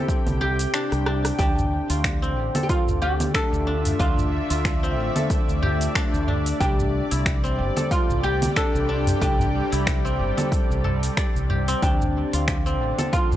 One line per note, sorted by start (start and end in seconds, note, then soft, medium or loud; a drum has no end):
0.00 1.39 C3 medium
0.00 2.22 C4 medium
0.00 2.46 C4 medium
0.00 0.73 D4 medium
0.00 0.69 E4 medium
0.00 1.39 E4 medium
0.00 1.96 E4 medium
0.00 0.15 G4 medium
0.00 3.07 G4 medium
0.00 2.13 A4 medium
0.00 3.40 G5 medium
0.09 kick loud
0.09 shaker medium
0.27 0.65 C2 medium
0.27 open hi-hat soft
0.27 low conga medium
0.27 shaker soft
0.41 2.76 G4 loud
0.59 open hi-hat medium
0.59 shaker medium
0.74 1.06 D4 medium
0.74 finger snap medium
0.74 shaker medium
0.92 1.30 C2 medium
0.92 cross-stick soft
0.92 open hi-hat soft
0.92 shaker soft
1.06 1.39 D4 medium
1.06 cross-stick medium
1.25 cross-stick medium
1.25 open hi-hat medium
1.25 shaker medium
1.38 1.78 D2 loud
1.38 6.60 D3 medium
1.38 3.34 D4 medium
1.38 2.62 G4 medium
1.38 kick loud
1.38 open hi-hat soft
1.38 shaker medium
1.58 udu medium
1.58 shaker soft
1.90 2.37 D2 medium
1.90 4.42 F4 medium
1.90 open hi-hat medium
1.90 shaker medium
2.04 finger snap loud
2.04 kick medium
2.04 open hi-hat soft
2.04 shaker medium
2.12 6.61 A3 medium
2.12 13.37 D5 medium
2.22 4.83 C4 medium
2.22 shaker soft
2.37 2.48 A1 medium
2.55 4.75 A4 medium
2.55 open hi-hat medium
2.55 low conga medium
2.55 shaker medium
2.63 2.69 G4 medium
2.69 3.00 F4 loud
2.69 kick loud
2.69 open hi-hat soft
2.69 shaker medium
2.86 3.26 D2 medium
2.86 6.61 F4 medium
2.86 8.15 E5 medium
2.86 udu medium
2.86 shaker soft
3.02 5.37 G4 medium
3.02 3.34 G4 loud
3.20 open hi-hat medium
3.20 low conga medium
3.20 shaker medium
3.34 3.66 D4 loud
3.34 4.00 A4 loud
3.34 finger snap loud
3.34 kick loud
3.34 open hi-hat soft
3.34 shaker medium
3.53 3.91 D2 medium
3.53 shaker soft
3.67 3.99 D4 medium
3.85 open hi-hat medium
3.85 udu medium
3.85 shaker medium
3.99 4.39 D2 medium
3.99 5.95 D4 medium
3.99 5.26 F4 medium
3.99 kick loud
3.99 open hi-hat soft
3.99 shaker medium
4.17 udu medium
4.17 shaker soft
4.50 4.97 D2 medium
4.50 7.03 F4 medium
4.50 open hi-hat medium
4.50 shaker medium
4.65 finger snap loud
4.65 kick loud
4.65 open hi-hat soft
4.65 shaker medium
4.83 7.43 C4 medium
4.83 shaker soft
4.97 5.08 A1 medium
5.16 7.35 A4 medium
5.16 open hi-hat medium
5.16 low conga medium
5.16 shaker medium
5.30 kick loud
5.30 open hi-hat soft
5.30 shaker medium
5.48 5.86 D2 medium
5.48 shaker soft
5.62 7.98 G4 loud
5.62 udu medium
5.81 open hi-hat medium
5.81 shaker medium
5.95 6.27 D4 medium
5.95 finger snap loud
5.95 kick loud
5.95 open hi-hat soft
5.95 shaker medium
6.14 6.52 D2 loud
6.14 shaker soft
6.28 6.60 D4 medium
6.28 udu loud
6.46 open hi-hat medium
6.46 shaker medium
6.60 7.00 C2 medium
6.60 11.82 C3 medium
6.60 8.56 D4 medium
6.60 7.91 G4 loud
6.60 kick loud
6.60 open hi-hat soft
6.60 shaker medium
6.79 udu medium
6.79 shaker soft
7.07 11.82 G3 medium
7.07 13.10 G5 medium
7.11 7.60 C2 medium
7.11 9.72 E4 medium
7.11 open hi-hat medium
7.11 shaker medium
7.26 finger snap loud
7.26 kick loud
7.26 open hi-hat soft
7.26 shaker medium
7.41 10.04 C4 medium
7.41 11.82 G4 medium
7.41 shaker soft
7.58 7.69 G1 medium
7.76 9.96 A4 medium
7.76 open hi-hat medium
7.76 low conga medium
7.76 shaker medium
7.91 8.24 F4 medium
7.91 kick loud
7.91 open hi-hat soft
7.91 shaker medium
8.09 8.47 C2 medium
8.09 udu medium
8.09 shaker soft
8.23 10.59 G4 medium
8.23 8.54 G4 loud
8.42 open hi-hat medium
8.42 low conga medium
8.42 shaker medium
8.56 8.88 D4 loud
8.56 9.21 A4 loud
8.56 finger snap loud
8.56 kick loud
8.56 open hi-hat soft
8.56 shaker medium
8.75 9.12 C2 loud
8.75 shaker soft
8.89 9.21 D4 medium
9.07 open hi-hat medium
9.07 udu loud
9.07 shaker medium
9.21 9.61 C2 medium
9.21 11.82 D4 medium
9.21 11.46 G4 loud
9.21 kick loud
9.21 open hi-hat soft
9.21 shaker medium
9.39 udu loud
9.39 shaker soft
9.72 10.21 C2 medium
9.72 12.33 E4 medium
9.72 open hi-hat medium
9.72 shaker medium
9.87 finger snap loud
9.87 kick loud
9.87 open hi-hat soft
9.87 shaker medium
10.05 11.68 C4 medium
10.05 shaker soft
10.19 10.30 G1 medium
10.37 10.84 A4 medium
10.37 open hi-hat medium
10.37 low conga medium
10.37 shaker medium
10.52 kick loud
10.52 open hi-hat soft
10.52 shaker medium
10.70 11.08 C2 medium
10.70 shaker soft
10.84 12.98 A4 medium
10.84 udu loud
11.03 open hi-hat medium
11.03 shaker medium
11.17 13.02 D5 medium
11.17 finger snap loud
11.17 kick loud
11.17 open hi-hat soft
11.17 shaker medium
11.35 11.73 C2 medium
11.35 shaker soft
11.50 13.37 G4 medium
11.50 udu loud
11.68 12.66 C4 loud
11.68 open hi-hat soft
11.68 shaker medium
11.82 12.22 D2 medium
11.82 13.37 D3 medium
11.82 13.37 D4 medium
11.82 13.12 G4 loud
11.82 kick loud
11.82 open hi-hat soft
11.82 shaker medium
12.00 udu medium
12.00 shaker soft
12.33 12.80 D2 medium
12.33 13.37 F4 medium
12.33 open hi-hat medium
12.33 shaker medium
12.48 finger snap medium
12.48 kick loud
12.48 open hi-hat soft
12.48 shaker medium
12.57 13.37 A3 medium
12.66 13.37 C4 medium
12.66 13.37 F4 loud
12.66 shaker soft
12.80 12.91 A1 loud
12.98 13.37 A4 medium
12.98 open hi-hat medium
12.98 low conga medium
12.98 shaker medium
13.13 13.37 F4 loud
13.13 kick loud
13.13 open hi-hat soft
13.13 shaker medium
13.31 13.37 D2 medium
13.31 udu medium
13.31 shaker soft